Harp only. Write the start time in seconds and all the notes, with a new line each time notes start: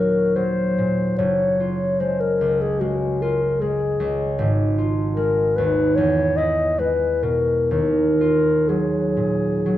Already playing: D#2 A#2 F#3 F#4
0.36 F#3
0.78 A#2
1.18 F#1
1.60 F4
2.00 G#3
2.41 C#2
2.81 G#3
3.22 F4
3.62 G#3
4.00 C#2
4.39 G#1
4.78 F4
5.17 G#3
5.58 D#2
5.97 E2
6.38 E4
6.78 G#3
7.23 B2
7.71 D#2
8.21 F4
8.69 F#3
9.17 A#2
9.66 F#3